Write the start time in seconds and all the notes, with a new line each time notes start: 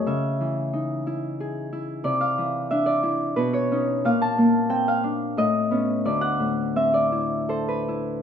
Already playing: E4 G#4 C#5 D#5
0.07 C#3 E5
0.41 E3
0.73 D#4
1.07 E4
1.40 G#4
1.73 E4
2.04 C3 D5
2.21 F5
2.38 E3
2.71 D4 E5
2.86 D5
3.03 E4
3.36 B2 B4
3.53 C#5
3.72 C#4 D#4
4.05 A#2 F5
4.22 A5
4.38 A#3
4.69 C4 G5
4.88 F5
5.04 D4
5.37 A2 D#5
5.71 B3 C#4
6.05 D2 D5
6.21 F#5
6.40 A2
6.76 C4 E5
6.94 D5
7.12 E4
7.49 A4 C5
7.68 B4
7.88 E4